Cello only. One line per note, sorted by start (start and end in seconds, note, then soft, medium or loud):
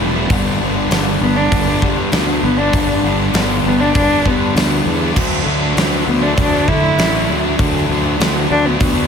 1.21 1.38 B3 loud
1.36 1.67 D4 loud
2.43 2.59 B3 medium
2.58 2.88 D4 loud
3.65 3.82 B3 loud
3.81 3.95 D4 loud
3.96 4.28 D4 loud
4.27 4.87 B3 loud
6.07 6.24 B3 medium
6.23 6.37 D4 medium
6.38 6.70 D4 loud
6.68 7.29 E4 loud
8.51 8.67 D4 loud
8.66 8.80 B3 loud
8.80 9.07 B3 loud